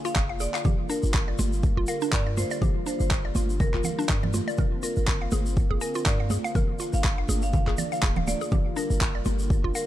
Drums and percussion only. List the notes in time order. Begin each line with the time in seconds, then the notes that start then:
0.05 shaker
0.15 kick, clap, shaker
0.40 shaker
0.54 clap, shaker
0.65 kick, mid tom, low conga, shaker
0.90 shaker
1.03 shaker
1.14 kick, clap, shaker
1.39 high conga, shaker
1.53 shaker
1.63 kick, high conga, shaker
1.87 shaker
2.01 shaker
2.12 kick, clap, shaker
2.38 high conga, shaker
2.51 shaker
2.62 kick, mid tom, low conga, shaker
2.87 shaker
3.00 shaker
3.11 kick, clap, shaker
3.35 high conga, shaker
3.50 shaker
3.60 kick, mid tom, high conga, shaker
3.74 clap
3.84 low conga, shaker
3.99 shaker
4.08 kick, clap, shaker
4.23 high conga, low conga
4.34 high conga, shaker
4.49 shaker
4.57 kick, mid tom, low conga, shaker
4.83 shaker
4.96 shaker
5.08 kick, clap, shaker
5.31 high conga, shaker
5.46 shaker
5.57 kick, high conga, shaker
5.81 shaker
5.95 shaker
6.06 kick, clap, shaker
6.30 high conga, shaker
6.45 shaker
6.55 kick, mid tom, low conga, shaker
6.79 shaker
6.93 shaker
7.04 kick, clap, shaker
7.29 high conga, shaker
7.42 shaker
7.53 kick, mid tom, high conga, shaker
7.67 clap
7.78 low conga, shaker
7.92 shaker
8.02 kick, clap, high conga, shaker
8.16 high conga, low conga
8.28 high conga, shaker
8.41 shaker
8.51 kick, mid tom, low conga, shaker
8.77 shaker
8.91 shaker
9.01 kick, clap, shaker
9.25 high conga, shaker
9.39 shaker
9.50 kick, high conga, shaker
9.75 shaker